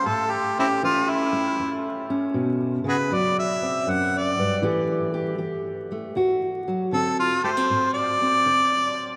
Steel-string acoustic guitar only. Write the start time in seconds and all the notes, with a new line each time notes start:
0.05 A2 A3
0.59 C#4
0.83 E3 C#4
1.33 A3
1.59 E2
2.10 C#4
2.34 B2
2.84 C#3
3.11 D2 F#3
3.62 C4
3.87 F#2
4.39 G2
4.62 A2 E3 A3 G4
5.14 G4
5.38 E3 G4
5.92 A3
6.16 D2 F#4
6.68 F#3
6.92 D3 C4
7.44 A3
7.57 C4
7.70 A2
8.22 C4
8.46 D3